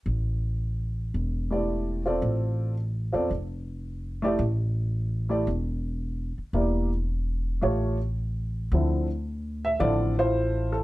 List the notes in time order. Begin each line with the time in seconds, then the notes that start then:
0.06 A1
1.14 E1
1.50 A3 E4 G4 D5
2.06 C4 F4 A4 D5
2.22 A1
3.13 E2 C4 F4 A4 D5
3.31 F1
4.22 A3 E4 G4 D5
4.39 A1
5.29 A3 E4 G4 D5
5.47 E1
6.38 muted upright bass stroke
6.53 E1 A#3 E4 G4 D5
7.61 A1 A3 F4 G4 C#5
8.72 D2 D3 F3 C4 E4
9.65 E5
9.79 A1 D3 F3 C4 E4 F4 A4 D5
10.19 E4 F4 C5
10.72 A4